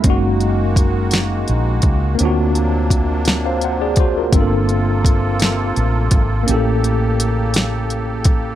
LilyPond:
<<
  \new Staff \with { instrumentName = "Tine electric piano" } { \time 6/8 \key fis \phrygian \tempo 4. = 56 << { r2. | r4. r16 <c'' eis''>16 <c'' fis''>16 <gis' d''>16 <fis' c''>16 <eis' ais'>16~ | <eis' ais'>16 r2 r8. | r2. | } \\ { <gis ais cis' dis' fis'>2. | <ais c' d' eis' fis'>2. | <a bes c' d' f' a'>2. | <bes cis' e' g' a'>2. | } >> }
  \new Staff \with { instrumentName = "Accordion" } { \time 6/8 \key fis \phrygian << { fis'2. | d'2. | f'2. | g'2. | } \\ { r2. | fis2. | a'2.~ | a'2. | } >> }
  \new Staff \with { instrumentName = "Accordion" } { \clef bass \time 6/8 \key fis \phrygian << { <gis ais>2.~ | <gis ais>2.~ | <gis ais>2.~ | <gis ais>2. | } \\ { dis2. | c2.~ | c2. | cis2. | } >> }
  \new Staff \with { instrumentName = "Fretless electric bass" } { \clef bass \time 6/8 \key fis \phrygian fis,,2 ais,,8 cis,8 | d,2. | g,,2 a,,8 gis,,8 | a,,2. | }
  \new DrumStaff \with { instrumentName = "Drums" } \drummode { \time 6/8 <hh bd>8 hh8 <hh bd>8 <hh sn>8 hh8 <hh bd>8 | hh8 hh8 <hh bd>8 <hh sn>8 hh8 <hh bd>8 | <hh bd>8 hh8 <hh bd>8 <hh sn>8 hh8 <hh bd>8 | hh8 hh8 hh8 <hh sn>8 hh8 <hh bd>8 | }
>>